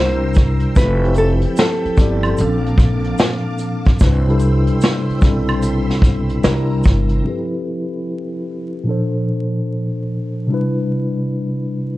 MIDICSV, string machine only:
0, 0, Header, 1, 2, 480
1, 0, Start_track
1, 0, Key_signature, 0, "major"
1, 0, Tempo, 810811
1, 451, Time_signature, 4, 2, 24, 8
1, 7089, End_track
2, 0, Start_track
2, 0, Title_t, "String machine"
2, 0, Program_c, 0, 50
2, 0, Note_on_c, 0, 70, 81
2, 0, Note_on_c, 0, 79, 66
2, 0, Note_on_c, 0, 84, 64
2, 0, Note_on_c, 0, 88, 87
2, 442, Note_off_c, 0, 84, 0
2, 443, Note_off_c, 0, 70, 0
2, 443, Note_on_c, 0, 83, 68
2, 445, Note_on_c, 0, 69, 78
2, 1383, Note_off_c, 0, 79, 0
2, 1384, Note_off_c, 0, 88, 0
2, 1397, Note_off_c, 0, 83, 0
2, 1398, Note_off_c, 0, 69, 0
2, 1408, Note_on_c, 0, 81, 70
2, 1410, Note_on_c, 0, 77, 66
2, 1410, Note_on_c, 0, 86, 80
2, 1411, Note_on_c, 0, 58, 79
2, 2360, Note_off_c, 0, 81, 0
2, 2361, Note_off_c, 0, 58, 0
2, 2361, Note_off_c, 0, 77, 0
2, 2361, Note_off_c, 0, 86, 0
2, 2372, Note_on_c, 0, 79, 77
2, 2374, Note_on_c, 0, 72, 72
2, 2375, Note_on_c, 0, 83, 72
2, 2375, Note_on_c, 0, 88, 90
2, 3798, Note_off_c, 0, 83, 0
2, 3811, Note_on_c, 0, 82, 67
2, 4272, Note_off_c, 0, 79, 0
2, 4273, Note_off_c, 0, 72, 0
2, 4273, Note_off_c, 0, 88, 0
2, 4286, Note_off_c, 0, 82, 0
2, 7089, End_track
0, 0, End_of_file